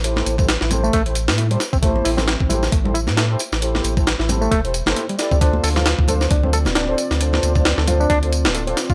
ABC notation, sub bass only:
X:1
M:4/4
L:1/16
Q:"Swing 16ths" 1/4=134
K:Am
V:1 name="Sub bass" clef=bass
A,,,2 A,,,3 A,,,3 A,,,3 A,,3 z A,,,- | A,,,2 A,,,3 A,,,3 A,,,3 A,,3 z A,,,- | A,,,2 A,,,3 A,,,3 E,,,3 G,,, z3 D,,- | D,,2 D,,3 D,,3 D,,3 D,,,3 z D,,- |
D,,2 D,,3 D,,3 D,,3 D,,,3 z D,, |]